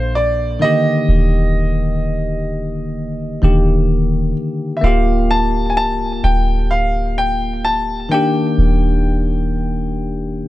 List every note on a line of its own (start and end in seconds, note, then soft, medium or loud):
0.00 0.57 A#1 loud
0.00 0.56 A#2 medium
0.00 0.57 A#3 medium
0.00 0.58 D4 medium
0.00 0.59 A4 medium
0.00 0.12 C5 medium
0.15 0.59 D5 medium
0.59 3.39 D3 medium
0.59 3.38 D#3 medium
0.59 3.38 A#3 medium
0.59 4.33 D#5 medium
0.64 3.40 G4 medium
1.08 3.39 D#1 loud
3.42 4.33 D#1 loud
3.42 4.84 D3 medium
3.42 4.83 D#3 medium
3.42 4.80 A#3 medium
3.42 4.84 G4 medium
4.77 4.83 E5 medium
4.81 5.79 D1 loud
4.81 8.06 A#3 medium
4.81 8.08 F4 medium
4.81 5.32 F5 medium
4.86 8.09 G4 medium
5.31 5.71 A5 loud
5.70 5.77 G#5 medium
5.77 6.22 C1 medium
5.77 6.25 A5 loud
6.24 8.07 D1 loud
6.24 6.72 G5 medium
6.71 7.14 F5 medium
7.18 7.66 G5 medium
7.65 8.08 A5 medium
8.09 10.41 D#3 medium
8.09 10.42 A#3 medium
8.09 10.42 D4 medium
8.09 10.48 G5 medium
8.14 10.43 G4 medium
8.58 10.42 D#1 loud